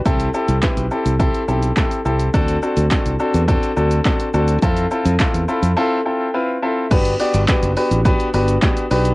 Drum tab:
CC |----------------|----------------|----------------|x---------------|
HH |xx-xxx-xxx-xxx-x|xx-xxx-xxx-xxx-x|xx-xxx-x--------|xxoxxxoxxxoxxxox|
SH |xxxxxxxxxxxxxxxx|xxxxxxxxxxxxxxxx|xxxxxxxx--------|xxxxxxxxxxxxxxxx|
CP |----x-------x---|----x-------x---|----x-----------|----x-------x---|
SD |----o-------o---|----o-------o---|----o-----------|----o-------o---|
BD |o---o---o---o---|o---o---o---o---|o---o-----------|o---o---o---o---|